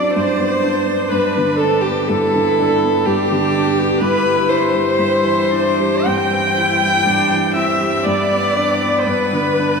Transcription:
Already playing: grand piano F#2 F#3 C4 D4, cello D4, violin D5, viola D5
0.14 grand piano G2, viola C5, violin C5
0.39 grand piano B3
0.64 grand piano D4
0.86 grand piano B3
1.09 grand piano G2, cello D4, viola B4, violin B4
1.38 grand piano D3
1.56 viola A4, violin A4
1.62 grand piano D4
1.81 viola G4, violin G4
1.86 grand piano B3
2.07 grand piano G2, cello E4, viola A4, violin A4
2.36 grand piano D3
2.59 grand piano D4
2.84 grand piano B3
3.04 grand piano G2, cello D4, viola G4, violin G4
3.31 grand piano D3
3.54 grand piano D4
3.79 grand piano B3
4.00 grand piano G2, cello E4, viola B4, violin B4
4.26 grand piano G3
4.48 grand piano E4, viola C5, violin C5
4.74 grand piano G3
4.97 grand piano G2, cello E4
5.24 grand piano E3
5.51 cello D4, grand piano E4
5.80 grand piano G3
6.06 grand piano G2, cello C4, violin G5, viola G5
6.33 grand piano E3
6.56 cello E4, grand piano E4
6.82 grand piano G3
7.07 grand piano G2, cello D4
7.31 grand piano E3
7.55 cello C4, grand piano E4, violin E5, viola E5
7.81 grand piano G3
8.05 grand piano G2, cello B3, viola D5, violin D5
8.32 grand piano B3
8.56 grand piano D4
8.83 grand piano B3
8.99 viola C5
9.04 grand piano G2, violin B4, viola B4
9.33 grand piano D3
9.59 grand piano D4

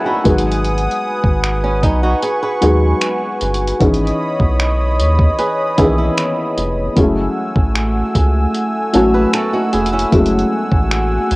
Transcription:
Already playing: felt piano F#3 A3 C#4 E4 B4 C#5 D#5 E5 F#5 G#5 A5, analog synth pad A3 F#5 G#5 E6
0.05 nylon-string guitar D#4 F#4, felt piano B5
0.24 analog synth bass G#1, felt piano F#3 G#3 B3 D#4 G#4, analog synth pad B4 D#6, kick, closed hi-hat
0.38 closed hi-hat
0.52 closed hi-hat
0.64 closed hi-hat
0.78 closed hi-hat
0.91 closed hi-hat
1.24 analog synth bass G#1, kick
1.44 finger snap
1.64 nylon-string guitar C#4
1.83 analog synth bass B1, nylon-string guitar B3 D#4, analog synth pad C#6, kick, closed hi-hat
2.03 nylon-string guitar D#4 F#4
2.22 nylon-string guitar G#4, closed hi-hat
2.43 nylon-string guitar G#4 B4
2.61 analog synth bass D#2, felt piano F#3 G#3 B3 D#4 G#4, closed hi-hat
3.01 finger snap, closed hi-hat
3.41 analog synth bass G1, closed hi-hat
3.54 closed hi-hat
3.67 closed hi-hat
3.80 analog synth bass G#1, felt piano E3 B3 C#4 D#4 G#4, analog synth pad C#5 D#5 B5 D#6, kick, closed hi-hat
3.94 closed hi-hat
4.07 closed hi-hat
4.40 analog synth bass B1, kick
4.60 finger snap
4.99 analog synth bass D#2, closed hi-hat
5.19 kick
5.39 nylon-string guitar G#4 B4, closed hi-hat
5.78 analog synth bass B1, felt piano D#3 B3 C#4 D#4 G#4, nylon-string guitar E4 G#4, kick, closed hi-hat
5.84 felt piano E3
5.98 nylon-string guitar C#4 E4
6.17 finger snap, closed hi-hat
6.58 analog synth bass F1, closed hi-hat
6.96 analog synth bass F#1, felt piano F#3 G#3 C#4 E4 G#4, analog synth pad A3 F#5 G#5 E6, kick, closed hi-hat
7.03 felt piano A3
7.56 analog synth bass A1, kick
7.76 finger snap
8.15 analog synth bass C#2, kick, closed hi-hat
8.54 closed hi-hat
8.93 analog synth bass A1, felt piano F#3 A3 C#4 E4 F#4, nylon-string guitar A4 C#5, closed hi-hat
9.14 nylon-string guitar G#4 B4
9.33 nylon-string guitar F#4 A4, finger snap, closed hi-hat
9.53 nylon-string guitar D#4 F#4
9.73 analog synth bass F1, nylon-string guitar E4 G#4, closed hi-hat
9.86 closed hi-hat
9.93 nylon-string guitar C#4 E4
9.99 closed hi-hat
10.11 analog synth bass F#1, felt piano F#3 G#3 C#4 E4 G#4, analog synth pad G#5, kick, closed hi-hat
10.18 felt piano A3
10.26 closed hi-hat
10.39 closed hi-hat
10.72 analog synth bass A1, kick
10.91 finger snap
11.31 analog synth bass C#2, closed hi-hat

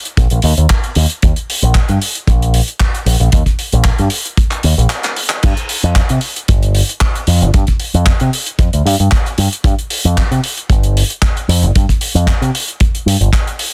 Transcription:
0.05 closed hi-hat
0.17 picked electric bass A#1, kick, closed hi-hat
0.30 picked electric bass A#1, closed hi-hat
0.42 picked electric bass D#2, open hi-hat
0.57 picked electric bass D#2, closed hi-hat
0.70 kick, clap, closed hi-hat
0.84 closed hi-hat
0.95 picked electric bass D#2, open hi-hat
1.10 closed hi-hat
1.22 picked electric bass D#2, kick, closed hi-hat
1.36 closed hi-hat
1.50 open hi-hat
1.63 picked electric bass A#1, closed hi-hat
1.74 kick, clap, closed hi-hat
1.89 picked electric bass G2, closed hi-hat
2.02 open hi-hat
2.15 closed hi-hat
2.27 picked electric bass A#1, kick, closed hi-hat
2.42 closed hi-hat
2.54 open hi-hat
2.68 closed hi-hat
2.80 kick, clap, closed hi-hat
2.95 closed hi-hat
3.06 picked electric bass A#1, open hi-hat
3.20 picked electric bass A#1, closed hi-hat
3.32 picked electric bass D#2, kick, closed hi-hat
3.46 kick, closed hi-hat
3.59 open hi-hat
3.72 picked electric bass A#1, closed hi-hat
3.84 kick, clap, closed hi-hat
3.98 picked electric bass G2, closed hi-hat
4.10 open hi-hat
4.25 closed hi-hat
4.37 kick, closed hi-hat
4.51 clap, closed hi-hat
4.63 picked electric bass D#2, open hi-hat
4.78 picked electric bass A#1, closed hi-hat
4.90 clap, closed hi-hat
5.03 clap, closed hi-hat
5.16 open hi-hat
5.30 clap, closed hi-hat
5.43 picked electric bass G2, kick, closed hi-hat, crash
5.57 closed hi-hat
5.69 open hi-hat
5.83 picked electric bass F2, closed hi-hat
5.96 kick, clap, closed hi-hat
6.09 picked electric bass C3, closed hi-hat
6.21 open hi-hat
6.36 closed hi-hat
6.48 picked electric bass G1, kick, closed hi-hat
6.63 closed hi-hat
6.75 open hi-hat
6.89 closed hi-hat
7.01 kick, clap, closed hi-hat
7.15 closed hi-hat
7.27 picked electric bass F2, open hi-hat
7.42 picked electric bass G1, closed hi-hat
7.54 picked electric bass G2, kick, closed hi-hat
7.67 kick, closed hi-hat
7.80 open hi-hat
7.94 picked electric bass F2, closed hi-hat
8.06 kick, clap, closed hi-hat
8.20 picked electric bass C3, closed hi-hat
8.33 open hi-hat
8.46 closed hi-hat
8.59 picked electric bass F2, kick, closed hi-hat
8.73 picked electric bass D2, closed hi-hat
8.86 picked electric bass G2, open hi-hat
9.00 picked electric bass G2, closed hi-hat
9.11 kick, clap, closed hi-hat
9.26 closed hi-hat
9.38 picked electric bass G2, open hi-hat
9.53 closed hi-hat
9.64 picked electric bass G2, kick, closed hi-hat
9.79 closed hi-hat
9.90 open hi-hat
10.05 picked electric bass F2, closed hi-hat
10.17 kick, clap, closed hi-hat
10.31 picked electric bass C3, closed hi-hat
10.44 open hi-hat
10.57 closed hi-hat
10.70 picked electric bass G1, kick, closed hi-hat
10.83 closed hi-hat
10.97 open hi-hat
11.10 closed hi-hat
11.22 kick, clap, closed hi-hat
11.37 closed hi-hat
11.48 picked electric bass F2, open hi-hat
11.62 picked electric bass G1, closed hi-hat
11.75 picked electric bass G2, kick, closed hi-hat
11.89 kick, closed hi-hat
12.01 open hi-hat
12.15 picked electric bass F2, closed hi-hat
12.27 kick, clap, closed hi-hat
12.41 picked electric bass C3, closed hi-hat
12.55 open hi-hat
12.68 closed hi-hat
12.80 kick, closed hi-hat
12.95 closed hi-hat
13.06 picked electric bass G2, open hi-hat
13.21 picked electric bass G1, closed hi-hat
13.33 kick, clap, closed hi-hat
13.47 closed hi-hat
13.59 open hi-hat

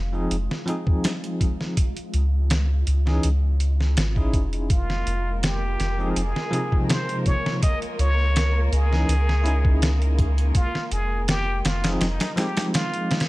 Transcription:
Already playing: sub bass F1, synth texture G#3 F4
0.13 tine electric piano F3 C4 D#4 G#4
0.31 sub bass F1, closed hi-hat
0.51 snare
0.66 tine electric piano F3 C4 D#4, closed hi-hat
0.70 tine electric piano G#4
0.87 kick
1.04 snare, closed hi-hat
1.24 closed hi-hat
1.41 kick, closed hi-hat
1.61 snare
1.77 kick, closed hi-hat
1.97 closed hi-hat
2.14 sub bass C#2, closed hi-hat
2.50 snare, closed hi-hat
2.87 sub bass C#2, closed hi-hat
3.06 tine electric piano E3 C#4 D#4 G#4, snare
3.23 sub bass C#2, closed hi-hat
3.60 closed hi-hat
3.81 snare
3.97 sub bass G#1, snare, closed hi-hat
4.15 tine electric piano C#4 D#4 E4 G#4, kick
4.33 sub bass F1, kick, closed hi-hat
4.53 closed hi-hat
4.70 violin section A#3 A#4, muted trumpet F4, kick, closed hi-hat
4.90 snare
5.07 sub bass F1, closed hi-hat
5.43 muted trumpet G4, snare, closed hi-hat
5.80 sub bass F1, snare, closed hi-hat
5.98 tine electric piano F3 C4 D#4 G#4
6.11 muted trumpet A#4
6.16 sub bass F1, muted trumpet G#4, closed hi-hat
6.36 snare
6.51 tine electric piano C3 F3 D#4, closed hi-hat
6.55 tine electric piano G#4
6.72 kick
6.89 muted trumpet C5, snare, closed hi-hat
7.09 closed hi-hat
7.26 muted trumpet C#5, kick, closed hi-hat
7.46 snare
7.63 muted trumpet D#5, kick, closed hi-hat
7.82 closed hi-hat
7.99 sub bass C#2, muted trumpet C#5, closed hi-hat
8.36 snare, closed hi-hat
8.72 sub bass C#2, muted trumpet G#4, closed hi-hat
8.91 tine electric piano E3 C#4 D#4 G#4, snare
9.08 sub bass C#2, closed hi-hat
9.29 snare
9.44 tine electric piano C#4 D#4 E4, closed hi-hat
9.48 tine electric piano G#4
9.65 kick
9.82 snare, closed hi-hat
10.02 closed hi-hat
10.19 kick, closed hi-hat
10.38 closed hi-hat
10.55 muted trumpet F4, kick, closed hi-hat
10.75 snare
10.91 sub bass F1, muted trumpet G#4, closed hi-hat
11.28 muted trumpet G4, snare, closed hi-hat
11.65 sub bass F1, muted trumpet F4, snare, closed hi-hat
11.83 tine electric piano F3 C4 D#4 G#4, snare, closed hi-hat
11.96 muted trumpet F4
12.01 sub bass F1, muted trumpet D#4, snare, closed hi-hat
12.20 snare, closed hi-hat
12.36 tine electric piano F3 C4 D#4, muted trumpet G4, snare, closed hi-hat
12.40 tine electric piano G#3
12.57 snare, closed hi-hat
12.74 muted trumpet F4, snare, closed hi-hat
12.94 closed hi-hat
13.11 snare, closed hi-hat
13.20 snare, closed hi-hat

